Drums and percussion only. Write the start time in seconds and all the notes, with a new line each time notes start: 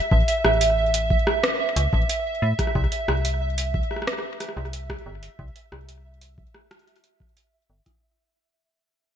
0.12 kick
0.28 closed hi-hat
0.45 cross-stick
0.61 closed hi-hat
0.94 closed hi-hat
1.10 kick
1.27 cross-stick
1.44 cross-stick, closed hi-hat
1.76 closed hi-hat
1.93 kick
2.09 closed hi-hat
2.59 kick, cross-stick, closed hi-hat
2.67 cross-stick
2.75 kick, cross-stick
2.84 cross-stick
2.92 closed hi-hat
3.08 cross-stick
3.25 closed hi-hat
3.58 closed hi-hat
3.74 kick
3.91 cross-stick
3.96 cross-stick
4.02 cross-stick
4.07 cross-stick, closed hi-hat
4.13 cross-stick
4.18 cross-stick
4.40 cross-stick, closed hi-hat
4.49 cross-stick
4.57 cross-stick
4.65 cross-stick
4.73 closed hi-hat
4.90 kick, cross-stick
5.23 closed hi-hat
5.39 kick
5.56 closed hi-hat
5.72 cross-stick
5.89 closed hi-hat
6.21 closed hi-hat
6.38 kick
6.54 cross-stick
6.71 cross-stick, closed hi-hat
6.79 closed hi-hat
6.87 closed hi-hat
6.96 closed hi-hat
7.04 closed hi-hat
7.20 kick
7.37 closed hi-hat
7.86 kick, cross-stick, closed hi-hat